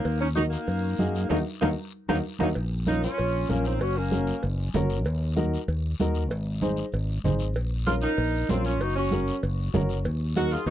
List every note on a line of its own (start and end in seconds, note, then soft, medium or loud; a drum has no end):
0.00 0.18 A#3 medium
0.00 0.18 D#4 medium
0.05 0.55 D#2 loud
0.05 cowbell loud
0.05 high conga soft
0.05 long guiro medium
0.21 0.28 C#4 medium
0.21 0.28 D#4 medium
0.36 0.43 D#4 loud
0.36 0.58 D#4 medium
0.36 0.43 F#4 medium
0.36 0.59 F#4 medium
0.36 0.59 A#4 medium
0.36 high conga medium
0.36 short guiro medium
0.50 1.26 A#3 medium
0.50 1.26 D#4 medium
0.50 short guiro medium
0.67 0.93 F#2 medium
0.67 cowbell medium
0.67 high conga soft
0.67 long guiro medium
0.99 1.24 F#2 medium
0.99 1.21 D#4 medium
0.99 1.21 F#4 medium
0.99 1.21 G#4 medium
0.99 high conga medium
0.99 short guiro medium
1.15 short guiro medium
1.28 1.42 D#2 medium
1.28 1.37 F#3 medium
1.28 1.37 A#3 medium
1.28 1.37 D#4 medium
1.28 1.41 D#4 loud
1.28 1.38 D#4 loud
1.28 1.41 F#4 loud
1.28 1.41 A#4 medium
1.28 high conga medium
1.28 high timbale loud
1.28 long guiro loud
1.61 1.74 D#2 loud
1.61 1.69 F#3 medium
1.61 1.69 A#3 loud
1.61 1.69 D#4 medium
1.61 1.72 D#4 loud
1.61 1.72 F#4 medium
1.61 1.72 A#4 loud
1.61 high conga loud
1.61 high timbale loud
2.09 2.20 D#2 medium
2.09 2.17 F#3 medium
2.09 2.17 A#3 medium
2.09 2.16 D#4 loud
2.09 2.19 D#4 medium
2.09 2.17 D#4 medium
2.09 2.19 F#4 medium
2.09 2.19 A#4 medium
2.09 high conga loud
2.09 high timbale loud
2.09 long guiro medium
2.39 2.52 D#2 medium
2.39 2.48 F#3 medium
2.39 2.48 A#3 medium
2.39 2.47 D#4 medium
2.39 2.50 D#4 medium
2.39 2.48 D#4 medium
2.39 2.50 F#4 medium
2.39 2.50 A#4 medium
2.39 high conga loud
2.39 high timbale loud
2.55 3.06 A#1 loud
2.55 cowbell loud
2.55 high conga soft
2.55 long guiro medium
2.86 3.09 C#4 medium
2.86 3.02 D#4 loud
2.86 3.09 F4 medium
2.86 3.09 A#4 medium
2.86 3.02 A#4 medium
2.86 high conga medium
2.86 short guiro medium
3.03 3.47 C#4 loud
3.03 3.52 F4 medium
3.03 short guiro medium
3.18 3.44 A#1 loud
3.18 cowbell medium
3.18 high conga soft
3.18 long guiro medium
3.49 3.81 A#1 medium
3.49 3.66 A#3 medium
3.49 3.71 C#4 medium
3.49 3.69 C#4 medium
3.49 3.71 F4 medium
3.49 3.71 A#4 medium
3.49 high conga medium
3.49 short guiro medium
3.65 3.81 C4 medium
3.65 3.83 D#4 medium
3.65 short guiro medium
3.80 4.31 F#1 loud
3.80 3.96 C#4 medium
3.80 4.00 F#4 medium
3.80 cowbell loud
3.80 high conga soft
3.80 long guiro medium
3.96 4.43 A#3 medium
3.96 4.44 C#4 medium
4.11 4.33 C#4 medium
4.11 4.34 F#4 medium
4.11 4.34 A#4 medium
4.11 high conga medium
4.11 short guiro medium
4.27 short guiro medium
4.43 4.68 F#1 loud
4.43 cowbell medium
4.43 high conga soft
4.43 long guiro medium
4.73 5.06 F#1 medium
4.73 4.96 C#4 medium
4.73 4.97 F#4 medium
4.73 4.97 A#4 loud
4.73 high conga medium
4.73 low conga medium
4.73 low timbale medium
4.73 short guiro medium
4.90 short guiro medium
5.05 5.56 D#2 loud
5.05 cowbell loud
5.05 high conga soft
5.05 long guiro medium
5.36 5.58 D#4 medium
5.36 5.59 F#4 medium
5.36 5.59 A#4 loud
5.36 high conga medium
5.36 short guiro medium
5.54 short guiro medium
5.68 5.93 D#2 loud
5.68 cowbell medium
5.68 high conga soft
5.68 long guiro medium
5.99 6.32 D#2 medium
5.99 6.22 D#4 medium
5.99 6.22 F#4 medium
5.99 6.22 A#4 medium
5.99 high conga medium
5.99 short guiro medium
6.14 short guiro medium
6.30 6.81 G#1 loud
6.30 cowbell loud
6.30 high conga soft
6.30 long guiro medium
6.61 6.83 D#4 medium
6.61 6.84 G#4 medium
6.61 6.84 C5 medium
6.61 high conga medium
6.61 short guiro medium
6.77 short guiro medium
6.92 7.18 G#1 loud
6.92 cowbell medium
6.92 high conga soft
6.92 long guiro medium
7.24 7.55 G#1 medium
7.24 7.46 D#4 medium
7.24 7.46 G#4 medium
7.24 7.46 C5 medium
7.24 high conga medium
7.24 low conga medium
7.24 short guiro medium
7.39 short guiro medium
7.54 8.05 A#1 medium
7.54 cowbell loud
7.54 high conga soft
7.54 long guiro medium
7.86 8.09 C#4 medium
7.86 7.94 F4 loud
7.86 8.09 F4 medium
7.86 8.09 A#4 medium
7.86 7.95 A#4 medium
7.86 high conga medium
7.86 short guiro medium
8.01 8.46 D#4 loud
8.01 8.52 A#4 medium
8.01 short guiro medium
8.17 8.43 A#1 loud
8.17 cowbell medium
8.17 high conga soft
8.17 long guiro medium
8.49 8.80 A#1 medium
8.49 8.65 C4 medium
8.49 8.71 C#4 medium
8.49 8.71 F4 medium
8.49 8.65 F4 medium
8.49 8.72 A#4 medium
8.49 high conga medium
8.49 low timbale medium
8.49 short guiro medium
8.65 8.80 C#4 medium
8.65 8.84 F4 medium
8.65 short guiro medium
8.80 9.30 F#1 loud
8.80 8.96 D#4 medium
8.80 8.97 F#4 medium
8.80 cowbell loud
8.80 high conga soft
8.80 long guiro medium
8.96 9.39 C#4 medium
8.96 9.41 F#4 medium
9.11 9.33 C#4 medium
9.11 9.33 F#4 medium
9.11 9.34 A#4 medium
9.11 high conga medium
9.11 short guiro medium
9.28 short guiro medium
9.43 9.68 F#1 loud
9.43 cowbell medium
9.43 high conga soft
9.43 long guiro medium
9.73 10.06 F#1 medium
9.73 9.96 C#4 medium
9.73 9.96 F#4 medium
9.73 9.96 A#4 loud
9.73 high conga medium
9.73 low conga medium
9.73 low timbale medium
9.73 short guiro medium
9.89 short guiro medium
10.04 10.55 D#2 loud
10.04 cowbell loud
10.04 high conga soft
10.04 long guiro medium
10.36 10.58 D#4 medium
10.36 10.58 F#4 medium
10.36 10.51 F#4 loud
10.36 10.54 A#4 medium
10.36 10.58 A#4 medium
10.36 high conga medium
10.36 short guiro medium
10.51 10.68 F4 loud
10.51 10.67 G#4 medium
10.51 short guiro medium
10.66 10.70 D#2 loud
10.66 10.70 D#4 loud
10.66 cowbell medium
10.66 long guiro medium